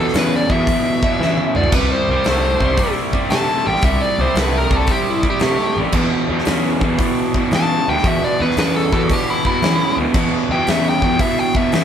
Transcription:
Already playing: overdriven electric guitar E2 B2, lead electric guitar A4
0.08 snare
0.14 picked electric bass E2, overdriven electric guitar E2 C#3, snare, open hi-hat
0.18 lead electric guitar B4
0.36 lead electric guitar D5
0.49 overdriven electric guitar E2 B2, picked electric bass E2, lead electric guitar E5, kick
0.67 overdriven electric guitar E2 B2, kick, open hi-hat
1.03 overdriven electric guitar E2 B2, kick
1.20 overdriven electric guitar E2 C#3, picked electric bass E3, snare
1.38 high tom
1.55 picked electric bass D2, overdriven electric guitar E2 B2, lead electric guitar D5, mid tom
1.64 floor tom
1.72 picked electric bass C2, overdriven electric guitar C3 G3, lead electric guitar B4, kick, crash
1.92 lead electric guitar C5
2.08 picked electric bass C2, overdriven electric guitar C3 G3
2.24 picked electric bass C2, overdriven electric guitar C3 A3, snare, open hi-hat
2.60 picked electric bass C2, overdriven electric guitar C3 G3, kick
2.77 overdriven electric guitar C3 G3, kick, open hi-hat
3.13 overdriven electric guitar C3 G3, kick
3.30 overdriven electric guitar C3 A3, picked electric bass C3, lead electric guitar A5, snare, open hi-hat
3.64 picked electric bass A1, overdriven electric guitar C3 G3, lead electric guitar G5
3.76 snare
3.82 picked electric bass C2, overdriven electric guitar C3 G3, lead electric guitar E5, kick, open hi-hat
4.02 lead electric guitar D5
4.18 picked electric bass C2, overdriven electric guitar C3 G3, lead electric guitar C5
4.35 picked electric bass C2, overdriven electric guitar C3 A3, snare, open hi-hat
4.40 lead electric guitar B4
4.57 lead electric guitar A#4
4.70 picked electric bass C2, overdriven electric guitar C3 G3, kick
4.76 lead electric guitar A4
4.87 overdriven electric guitar C3 G3, kick, open hi-hat
4.92 lead electric guitar G4
5.10 lead electric guitar E4
5.23 overdriven electric guitar C3 G3, kick
5.30 lead electric guitar G4
5.39 picked electric bass C3, overdriven electric guitar C3 A3, snare, open hi-hat
5.77 picked electric bass A1, overdriven electric guitar C3 G3
5.92 picked electric bass E2, overdriven electric guitar E2 B2, kick, crash
6.29 picked electric bass E2, overdriven electric guitar E2 B2
6.39 snare
6.45 overdriven electric guitar E2 C#3, picked electric bass E2, snare, open hi-hat
6.81 picked electric bass E2, overdriven electric guitar E2 B2, kick
6.99 overdriven electric guitar E2 B2, kick, open hi-hat
7.34 overdriven electric guitar E2 B2, kick
7.51 overdriven electric guitar E2 C#3, picked electric bass E3, snare, open hi-hat
7.55 lead electric guitar A5
7.88 picked electric bass D2, overdriven electric guitar E2 B2, lead electric guitar G5
7.98 snare
8.04 picked electric bass E2, overdriven electric guitar E2 B2, lead electric guitar E5, kick, open hi-hat
8.24 lead electric guitar D5
8.39 overdriven electric guitar E2 B2, picked electric bass E2, lead electric guitar B4
8.51 snare
8.57 picked electric bass E2, overdriven electric guitar E2 C#3, lead electric guitar B4, snare, open hi-hat
8.76 lead electric guitar A4
8.92 overdriven electric guitar E2 B2, picked electric bass E2, lead electric guitar A4, kick
9.10 overdriven electric guitar E2 B2, lead electric guitar G4, kick, open hi-hat
9.30 lead electric guitar E4
9.45 overdriven electric guitar E2 B2, lead electric guitar E4, kick
9.62 overdriven electric guitar E2 C#3, picked electric bass E3, snare, open hi-hat
9.97 picked electric bass D2, overdriven electric guitar E2 B2
10.14 picked electric bass E2, overdriven electric guitar E2 B2, kick, crash
10.49 picked electric bass E2, overdriven electric guitar E2 B2, lead electric guitar G5
10.67 picked electric bass E2, overdriven electric guitar E2 C#3, lead electric guitar E5, snare, open hi-hat
10.89 lead electric guitar G5
11.02 picked electric bass E2, overdriven electric guitar E2 B2, lead electric guitar G5, kick
11.19 overdriven electric guitar E2 B2, lead electric guitar E5, kick, open hi-hat
11.39 lead electric guitar G5
11.55 overdriven electric guitar E2 B2, lead electric guitar E5, kick
11.72 overdriven electric guitar E2 C#3, picked electric bass E3, snare, open hi-hat

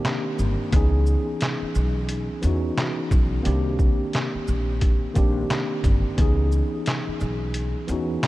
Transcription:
Already playing: tine electric piano D#3 A#3 C4 D4 G4
0.05 snare, clap, closed hi-hat
0.39 upright bass G1, shaker
0.71 upright bass C#2, tine electric piano E3 B3 C#4 D#4, kick, closed hi-hat
0.76 tine electric piano G#4
1.06 shaker
1.41 snare, clap, closed hi-hat
1.62 muted upright bass stroke
1.75 upright bass B1, shaker
2.09 closed hi-hat
2.42 upright bass E2, tine electric piano E3 B3 C#4 D#4, closed hi-hat, shaker
2.47 tine electric piano F#4
2.78 snare, clap, closed hi-hat
3.11 upright bass B1, kick, shaker
3.42 tine electric piano D#3 A#3 C4 D4, closed hi-hat
3.46 upright bass C2, tine electric piano G4
3.79 kick, shaker
4.13 snare, clap, closed hi-hat
4.35 muted upright bass stroke
4.48 upright bass A#1, shaker
4.81 kick, closed hi-hat
5.13 upright bass A#1, tine electric piano D#3 A#3 C4 D4, kick, closed hi-hat, shaker
5.18 tine electric piano G4
5.50 snare, clap, closed hi-hat
5.84 upright bass G1, kick, closed hi-hat, shaker
6.17 upright bass C#2, tine electric piano E3 B3 C#4 D#4, kick, closed hi-hat
6.22 tine electric piano G#4
6.52 shaker
6.86 snare, clap, closed hi-hat
7.08 muted upright bass stroke
7.20 upright bass B1, shaker
7.54 closed hi-hat
7.88 upright bass E2, tine electric piano E3 B3 C#4 D#4, closed hi-hat, shaker
7.92 tine electric piano F#4
8.23 snare, clap, closed hi-hat

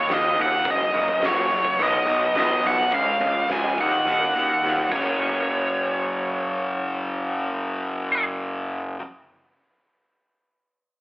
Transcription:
Already playing: distorted electric guitar D#4, lead electric guitar C#5
0.08 picked electric bass D#2, distorted electric guitar D#3 A#3 D#4, snare, closed hi-hat
0.14 lead electric guitar D#5
0.23 muted clean electric guitar stroke
0.35 picked electric bass D#2, distorted electric guitar D#3 A#3, closed hi-hat
0.39 distorted electric guitar D#4, lead electric guitar F#5
0.64 picked electric bass F#1, distorted electric guitar F#2 C#3 F#3, kick, closed hi-hat
0.71 lead electric guitar D#5
0.80 muted clean electric guitar stroke
0.93 picked electric bass F#1, distorted electric guitar F#2 C#3 F#3, clean electric guitar A#3 C#4 F#4 A#4, closed hi-hat
1.08 kick
1.21 picked electric bass F#1, distorted electric guitar F#2 C#3 F#3, muted clean electric guitar stroke, snare, closed hi-hat
1.26 lead electric guitar C#5
1.36 clean electric guitar A#3 C#4 F#4 A#4
1.50 distorted electric guitar F#2 C#3 F#3, closed hi-hat
1.65 kick
1.78 picked electric bass B1, distorted electric guitar B2 F#3 B3, muted clean electric guitar stroke, closed hi-hat
1.83 lead electric guitar D#5
1.93 clean electric guitar B3 D#4 F#4 C#5
2.06 picked electric bass B1, distorted electric guitar B2 F#3 B3, clean electric guitar B3 D#4 F#4 C#5, closed hi-hat
2.35 picked electric bass B1, distorted electric guitar B2 F#3 B3, snare, closed hi-hat
2.40 lead electric guitar D#5
2.50 muted clean electric guitar stroke
2.64 picked electric bass B1, distorted electric guitar B2 F#3 B3, lead electric guitar F#5, snare, closed hi-hat
2.91 picked electric bass C#2, distorted electric guitar C#3 G#3 C#4, lead electric guitar F5, kick, closed hi-hat
3.06 muted clean electric guitar stroke
3.20 picked electric bass C#2, distorted electric guitar C#3 G#3 C#4, clean electric guitar C#4 F4 G#4 D#5, kick, closed hi-hat
3.49 picked electric bass C#2, distorted electric guitar C#3 G#3 C#4, lead electric guitar G#5, snare, closed hi-hat
3.64 clean electric guitar C#4 F4 G#4 D#5
3.78 picked electric bass D#2, distorted electric guitar D#3 A#3 D#4, lead electric guitar F#5, kick, closed hi-hat
4.04 picked electric bass D#2, distorted electric guitar D#3 A#3 D#4, muted clean electric guitar stroke, closed hi-hat
4.20 clean electric guitar C#4 F#4 A#4 D#5
4.33 picked electric bass D#2, distorted electric guitar D#3 A#3 D#4, clean electric guitar C#4 F#4 A#4 D#5, closed hi-hat
4.62 picked electric bass D#2, distorted electric guitar D#3 A#3 D#4, snare
4.77 muted clean electric guitar stroke
4.89 picked electric bass F#1, distorted electric guitar F#2, clean electric guitar F#3 C#4 F#4 A#4, lead electric guitar C#5, kick, crash
4.93 distorted electric guitar C#3 F#3, clean electric guitar C#5

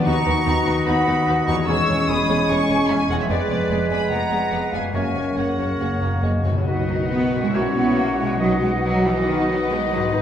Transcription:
Already playing: harp D#3 B3 F#4, bassoon B3, french horn section B3
0.01 harp D#5
0.05 double bass section D#2, cello section D#2, viola section B3 D#4, french horn section D#4, violin section F#4 B4 C#6, clarinet F#4, oboe D#5, flute section A#5
0.25 double bass section D#2, cello section D#2, viola section B3 D#4, violin section F#4 B4
0.45 double bass section D#2, cello section D#2, viola section B3 D#4, violin section F#4 B4
0.65 double bass section D#2, cello section D#2, viola section B3 D#4, violin section F#4 B4
0.86 cello section D#2, double bass section D#2, viola section B3 D#4, violin section F#4 B4 B5, flute section F#5
1.06 double bass section D#2, cello section D#2, viola section B3 D#4, violin section F#4 B4
1.26 double bass section D#2, cello section D#2, viola section B3 D#4, violin section F#4 B4
1.47 double bass section D#2, cello section D#2, harp E2, viola section B3 D#4, violin section F#4 B4 C#6, flute section A#5
1.54 harp G#3
1.59 harp G#4
1.63 viola section G#3 C#4, harp C#5, flute section C#6
1.68 double bass section E1, cello section E2, bassoon G#3, french horn section G#3 C#4, clarinet G#4, violin section G#4 C#5 E6, oboe C#5
1.88 double bass section E1, cello section E2, viola section G#3 C#4, violin section G#4 C#5
2.08 double bass section E1, cello section E2, viola section G#3 C#4, violin section G#4 C#5 D#6, flute section B5
2.28 double bass section E1, cello section E2, viola section G#3 C#4, violin section G#4 C#5
2.49 double bass section E1, cello section E2, viola section G#3 C#4, violin section G#4 C#5 C#6, flute section G#5
2.69 double bass section E1, cello section E2, viola section G#3 C#4, violin section G#4 C#5
2.89 double bass section E1, cello section E2, viola section G#3 C#4, violin section G#4 C#5 G#5, flute section E5
3.09 double bass section E1, cello section E2, harp F2, viola section G#3 C#4, violin section G#4 C#5 F#5, flute section D#5
3.17 harp G#3, flute section C#5
3.21 harp G#4, violin section E5
3.25 harp B4
3.30 double bass section F1, cello section F2, viola section G#3 B3, bassoon G#3, french horn section B3, clarinet G#4, violin section G#4 D5, flute section B4, oboe B4
3.50 double bass section F1, cello section F2, viola section G#3 B3, violin section G#4 D5
3.70 double bass section F1, cello section F2, viola section G#3 B3, violin section G#4 D5
3.90 double bass section F1, cello section F2, viola section G#3 B3, violin section G#4 D5 B5, flute section G#5
4.10 double bass section F1, cello section F2, viola section G#3 B3, violin section G#4 D5 A#5, flute section F#5
4.31 double bass section F1, cello section F2, viola section G#3 B3, violin section G#4 D5
4.51 double bass section F1, cello section F2, viola section G#3 B3, violin section G#4 D5
4.72 double bass section F1, cello section F2, viola section G#3 B3, violin section G#4 D5 G#5, flute section F5
4.76 harp F#2
4.81 harp A#3
4.85 harp F#4
4.90 cello section F#2, harp C#5, violin section C#5
4.94 double bass section F#1, timpani F#2, bassoon F#3, french horn section A#3 C#4, viola section A#3 C#4, violin section F#4 G#5, clarinet A#4, oboe C#5, flute section E5
5.10 timpani F#2
5.15 double bass section F#1, cello section F#2, timpani F#2, viola section A#3 C#4, violin section F#4 C#5
5.24 timpani F#2
5.31 timpani F#2
5.37 double bass section F#1, cello section F#2, timpani F#2, bassoon C#3, viola section A#3 C#4, violin section F#4 C#5 F#5, clarinet A#4, oboe C#5, flute section C#5
5.46 timpani F#2
5.54 timpani F#2
5.58 double bass section F#1, cello section F#2, timpani F#2, viola section A#3 C#4, violin section F#4 C#5
5.69 timpani F#2
5.76 timpani F#2
5.80 double bass section F#1, cello section F#2, timpani F#2, viola section A#3 C#4, violin section F#4 C#5
5.90 timpani F#2
5.98 double bass section F#1, timpani F#2, cello section F#2, viola section A#3 C#4, bassoon A#3, violin section F#4 C#5
6.05 timpani F#2
6.13 timpani F#2
6.20 double bass section F#1, timpani F#2, cello section F#2, bassoon G#3, viola section A#3 C#4, violin section F#4 C#5
6.28 timpani F#2
6.36 timpani F#2
6.43 double bass section F#1, timpani F#2, cello section F#2, viola section A#3 C#4, violin section F#4 C#5
6.48 timpani F#2, harp B2
6.53 bassoon F#3, harp B3
6.58 timpani F#2, harp F#4
6.62 harp D#5
6.66 double bass section B1, bassoon D#3, viola section D#4, french horn section D#4 F#4, violin section F#4 D#5, clarinet F#4, oboe B4, flute section F#5
6.88 cello section F#3
7.10 cello section B3
7.36 harp A#2
7.40 cello section G#3, harp C#4
7.45 harp F#4
7.49 viola section E4, harp E5
7.54 double bass section A#1, bassoon E3, cello section A#3, french horn section E4 F#4, violin section C#5, oboe C#5
7.75 cello section B3
7.97 cello section A#3
8.19 harp B2, cello section G#3
8.27 harp B3
8.31 harp D#4
8.36 bassoon D#3, harp D#5
8.40 double bass section B1, cello section F#3, viola section D#4, french horn section D#4 F#4, violin section B4 D#5, oboe D#5
8.62 cello section G#3
8.84 cello section F#3
9.06 cello section E3
9.27 cello section D#3, french horn section D#4 F#4
9.49 cello section F#3
9.70 cello section G#3
9.92 harp G#2, cello section F#3
10.00 harp B3
10.05 harp D#4
10.09 french horn section B4, harp D#5
10.13 double bass section G#1, french horn section D#4, clarinet D#4, flute section B5

